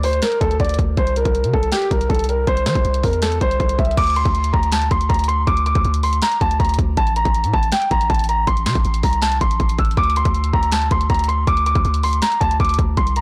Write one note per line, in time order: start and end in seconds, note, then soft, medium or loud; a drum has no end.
0.00 0.21 D2 loud
0.00 0.18 C5 medium
0.00 open hi-hat medium
0.13 closed hi-hat medium
0.22 0.37 A#4 medium
0.22 snare loud
0.22 closed hi-hat medium
0.32 closed hi-hat medium
0.41 0.59 D2 loud
0.41 0.55 A4 medium
0.41 kick loud
0.41 closed hi-hat medium
0.51 closed hi-hat medium
0.60 0.78 D2 loud
0.60 0.74 D5 medium
0.60 kick loud
0.60 closed hi-hat soft
0.65 closed hi-hat medium
0.69 closed hi-hat medium
0.74 closed hi-hat medium
0.79 0.97 D2 loud
0.79 kick loud
0.79 closed hi-hat medium
0.97 1.24 C2 loud
0.97 1.12 C5 medium
0.97 kick loud
0.97 closed hi-hat medium
1.07 closed hi-hat medium
1.16 1.52 A#4 medium
1.16 closed hi-hat medium
1.25 1.46 C2 loud
1.25 kick loud
1.25 closed hi-hat medium
1.35 closed hi-hat medium
1.44 1.53 C3 loud
1.44 closed hi-hat medium
1.53 1.72 C2 loud
1.53 1.68 A4 medium
1.53 kick medium
1.63 closed hi-hat medium
1.72 1.86 G4 medium
1.72 snare loud
1.72 closed hi-hat medium
1.82 closed hi-hat medium
1.91 2.09 C2 loud
1.91 2.06 A#4 medium
1.91 kick medium
1.91 closed hi-hat medium
2.01 closed hi-hat medium
2.09 2.46 C2 loud
2.09 2.24 A4 medium
2.09 kick loud
2.09 closed hi-hat soft
2.15 closed hi-hat medium
2.19 closed hi-hat medium
2.24 closed hi-hat medium
2.29 2.43 A#4 medium
2.29 closed hi-hat medium
2.47 2.68 C2 loud
2.47 2.61 C5 medium
2.47 kick loud
2.47 closed hi-hat medium
2.57 closed hi-hat medium
2.66 2.75 E3 loud
2.66 3.01 C5 medium
2.66 snare medium
2.66 closed hi-hat medium
2.75 2.84 C2 loud
2.75 kick loud
2.75 closed hi-hat medium
2.85 3.03 C2 loud
2.85 closed hi-hat medium
2.94 closed hi-hat medium
3.03 3.40 E2 loud
3.03 3.18 A#4 medium
3.03 kick medium
3.03 open hi-hat medium
3.13 closed hi-hat medium
3.22 3.37 A4 medium
3.22 snare loud
3.22 closed hi-hat medium
3.32 closed hi-hat medium
3.41 3.59 C2 loud
3.41 3.76 C5 medium
3.41 kick loud
3.41 closed hi-hat medium
3.51 closed hi-hat medium
3.60 3.78 C2 loud
3.60 kick loud
3.60 closed hi-hat soft
3.69 closed hi-hat medium
3.79 3.97 C2 loud
3.79 3.93 E5 medium
3.79 kick loud
3.79 closed hi-hat soft
3.85 closed hi-hat soft
3.91 closed hi-hat medium
3.97 4.24 D2 loud
3.97 4.12 D6 loud
3.97 kick loud
3.97 closed hi-hat medium
3.97 crash loud
4.04 closed hi-hat medium
4.07 closed hi-hat medium
4.10 closed hi-hat medium
4.16 4.51 C6 medium
4.16 closed hi-hat medium
4.25 4.52 D2 loud
4.25 kick loud
4.25 closed hi-hat medium
4.35 closed hi-hat medium
4.44 closed hi-hat medium
4.53 4.90 D2 loud
4.53 4.67 A#5 medium
4.53 kick loud
4.63 closed hi-hat medium
4.72 4.87 A5 medium
4.72 snare loud
4.72 closed hi-hat medium
4.82 closed hi-hat medium
4.91 5.09 D2 loud
4.91 5.05 C6 medium
4.91 kick loud
4.91 closed hi-hat medium
5.01 closed hi-hat medium
5.09 5.46 D2 loud
5.09 5.24 A#5 medium
5.09 kick loud
5.09 closed hi-hat medium
5.14 closed hi-hat medium
5.19 closed hi-hat medium
5.24 closed hi-hat medium
5.28 5.43 C6 medium
5.28 closed hi-hat medium
5.47 5.74 D2 loud
5.47 5.61 D6 medium
5.47 kick loud
5.47 closed hi-hat medium
5.57 closed hi-hat medium
5.66 6.01 D6 medium
5.66 closed hi-hat medium
5.75 5.84 D2 loud
5.75 kick loud
5.75 closed hi-hat medium
5.85 6.21 D2 loud
5.85 closed hi-hat medium
5.94 closed hi-hat medium
6.03 6.18 C6 medium
6.03 open hi-hat medium
6.13 closed hi-hat medium
6.22 6.37 A#5 medium
6.22 snare loud
6.22 closed hi-hat medium
6.32 closed hi-hat medium
6.41 6.59 D2 loud
6.41 6.55 A5 medium
6.41 kick loud
6.41 closed hi-hat medium
6.51 closed hi-hat medium
6.59 6.78 D2 loud
6.59 6.74 A#5 medium
6.59 kick loud
6.59 closed hi-hat medium
6.65 closed hi-hat medium
6.69 closed hi-hat medium
6.74 closed hi-hat medium
6.79 6.97 D2 loud
6.79 kick loud
6.79 closed hi-hat medium
6.97 7.24 A1 loud
6.97 7.12 A5 medium
6.97 kick loud
6.97 closed hi-hat medium
7.07 closed hi-hat medium
7.16 7.51 A#5 medium
7.16 closed hi-hat medium
7.25 7.46 A1 loud
7.25 kick loud
7.25 closed hi-hat medium
7.34 closed hi-hat medium
7.44 7.53 A2 loud
7.44 closed hi-hat medium
7.54 7.72 A1 loud
7.54 7.68 A5 medium
7.54 kick loud
7.63 closed hi-hat medium
7.72 7.86 G5 medium
7.72 snare loud
7.72 closed hi-hat medium
7.82 closed hi-hat medium
7.91 8.09 A1 loud
7.91 8.06 A#5 medium
7.91 kick loud
7.91 closed hi-hat medium
8.01 closed hi-hat medium
8.10 8.46 A1 loud
8.10 8.24 A5 medium
8.10 kick loud
8.10 closed hi-hat medium
8.14 closed hi-hat medium
8.19 closed hi-hat medium
8.24 closed hi-hat medium
8.29 8.43 A#5 medium
8.29 closed hi-hat medium
8.47 8.68 A1 loud
8.47 8.62 C6 medium
8.47 kick loud
8.47 closed hi-hat medium
8.57 closed hi-hat medium
8.66 8.75 C3 loud
8.66 9.01 C6 medium
8.66 snare loud
8.66 closed hi-hat medium
8.75 8.84 A1 loud
8.75 kick loud
8.75 closed hi-hat medium
8.85 9.03 A1 loud
8.85 closed hi-hat medium
8.94 closed hi-hat medium
9.03 9.40 C2 loud
9.03 9.18 A#5 medium
9.03 kick loud
9.03 open hi-hat medium
9.13 closed hi-hat medium
9.22 9.37 A5 medium
9.22 snare loud
9.22 closed hi-hat medium
9.32 closed hi-hat medium
9.41 9.59 A1 loud
9.41 9.76 C6 medium
9.41 kick loud
9.41 closed hi-hat medium
9.51 closed hi-hat medium
9.60 9.78 A1 loud
9.60 kick loud
9.60 closed hi-hat medium
9.69 closed hi-hat medium
9.79 9.97 A1 loud
9.79 9.93 E6 medium
9.79 kick loud
9.79 closed hi-hat soft
9.85 closed hi-hat soft
9.91 closed hi-hat medium
9.97 10.24 D2 loud
9.97 10.12 D6 loud
9.97 kick loud
9.97 closed hi-hat medium
10.04 closed hi-hat medium
10.10 closed hi-hat medium
10.16 10.52 C6 medium
10.16 closed hi-hat medium
10.25 10.52 D2 loud
10.25 kick loud
10.25 closed hi-hat medium
10.35 closed hi-hat medium
10.44 closed hi-hat medium
10.53 10.90 D2 loud
10.53 10.68 A#5 medium
10.53 kick loud
10.63 closed hi-hat medium
10.72 10.87 A5 medium
10.72 snare loud
10.72 closed hi-hat medium
10.82 closed hi-hat medium
10.91 11.09 D2 loud
10.91 11.06 C6 medium
10.91 kick loud
10.91 closed hi-hat medium
11.01 closed hi-hat medium
11.10 11.46 D2 loud
11.10 11.24 A#5 medium
11.10 kick loud
11.10 closed hi-hat soft
11.14 closed hi-hat medium
11.19 closed hi-hat medium
11.24 closed hi-hat medium
11.28 11.43 C6 medium
11.28 closed hi-hat medium
11.47 11.74 D2 loud
11.47 11.62 D6 loud
11.47 kick loud
11.47 closed hi-hat medium
11.57 closed hi-hat medium
11.66 12.01 D6 medium
11.66 closed hi-hat medium
11.75 11.84 D2 loud
11.75 kick loud
11.75 closed hi-hat medium
11.85 12.21 D2 loud
11.85 closed hi-hat medium
11.94 closed hi-hat medium
12.03 12.18 C6 medium
12.03 open hi-hat medium
12.13 closed hi-hat medium
12.22 12.36 A#5 medium
12.22 snare loud
12.22 closed hi-hat medium
12.32 closed hi-hat medium
12.41 12.59 D2 loud
12.41 12.55 A5 medium
12.41 kick medium
12.41 closed hi-hat medium
12.51 closed hi-hat medium
12.60 12.78 D2 loud
12.60 12.74 D6 medium
12.60 kick loud
12.60 closed hi-hat medium
12.65 closed hi-hat medium
12.69 closed hi-hat medium
12.74 closed hi-hat medium
12.79 12.97 D2 loud
12.79 kick loud
12.79 closed hi-hat medium
12.97 13.21 C2 loud
12.97 13.12 C6 medium
12.97 kick loud
12.97 closed hi-hat medium
13.07 closed hi-hat medium
13.16 13.21 A#5 medium
13.16 closed hi-hat medium